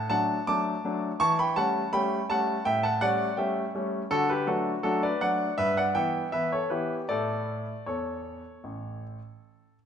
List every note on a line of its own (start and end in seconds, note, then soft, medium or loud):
0.10 0.37 F#3 medium
0.10 0.37 A3 medium
0.10 0.38 D4 medium
0.10 0.45 F#5 medium
0.10 0.47 A5 loud
0.47 0.74 F#3 soft
0.47 0.74 A3 medium
0.47 0.74 D4 medium
0.47 1.17 A5 medium
0.47 1.20 D6 loud
0.84 1.10 F#3 medium
0.84 1.11 A3 medium
0.84 1.11 D4 medium
1.20 1.55 E3 medium
1.20 1.37 A5 medium
1.20 1.38 C#6 loud
1.39 1.56 G5 medium
1.39 1.57 B5 loud
1.56 1.83 G3 medium
1.56 1.83 A3 soft
1.56 1.83 C#4 medium
1.56 1.91 F#5 medium
1.56 1.93 A5 loud
1.93 2.19 G3 medium
1.93 2.19 A3 medium
1.93 2.20 C#4 medium
1.93 2.27 G5 medium
1.93 2.25 B5 loud
2.30 2.56 G3 medium
2.30 2.56 A3 medium
2.30 2.56 C#4 medium
2.30 2.64 F#5 medium
2.30 2.66 A5 loud
2.65 3.01 A2 medium
2.65 2.83 E5 medium
2.65 2.83 G5 loud
2.83 3.00 F#5 medium
2.83 3.01 A5 medium
3.01 3.28 G3 medium
3.01 3.28 A3 medium
3.01 3.28 C#4 medium
3.01 3.36 D5 medium
3.01 3.34 F#5 loud
3.37 3.64 G3 medium
3.37 3.64 A3 medium
3.37 3.65 C#4 medium
3.37 3.72 E5 medium
3.37 3.70 G5 medium
3.75 4.01 G3 soft
3.75 4.01 A3 medium
3.75 4.01 C#4 medium
4.11 4.46 D3 medium
4.11 4.28 F#4 medium
4.11 4.29 A4 loud
4.30 4.47 G4 medium
4.30 4.48 B4 medium
4.47 4.73 F#3 soft
4.47 4.74 A3 soft
4.47 4.74 D4 medium
4.47 4.81 F#4 medium
4.47 4.69 A4 medium
4.83 5.10 F#3 soft
4.83 5.11 A3 soft
4.83 5.11 D4 medium
4.83 5.01 F#4 medium
4.83 5.02 A4 medium
5.03 5.20 B4 medium
5.03 5.21 D5 medium
5.21 5.48 F#3 soft
5.21 5.48 A3 soft
5.21 5.48 D4 medium
5.21 5.56 D5 medium
5.21 5.54 F#5 medium
5.58 5.94 G2 medium
5.58 5.76 B4 medium
5.58 5.76 E5 loud
5.77 5.95 D5 medium
5.77 5.95 F#5 medium
5.95 6.22 E3 soft
5.95 6.23 B3 soft
5.95 6.23 E4 medium
5.95 6.30 E5 medium
5.95 6.29 G5 loud
6.32 6.60 E3 soft
6.32 6.60 B3 soft
6.32 6.61 E4 medium
6.32 6.51 B4 medium
6.32 6.51 E5 medium
6.52 6.70 A4 medium
6.52 6.71 C#5 medium
6.70 6.98 E3 soft
6.70 6.98 B3 soft
6.70 6.99 E4 soft
6.70 7.07 G4 medium
6.70 6.93 B4 medium
7.09 7.64 A2 medium
7.09 7.72 A3 soft
7.09 7.72 E4 soft
7.09 7.83 A4 medium
7.09 7.87 D5 medium
7.86 8.41 E2 medium
7.86 9.75 A4 soft
7.86 9.01 C#5 medium
8.64 9.17 A1 soft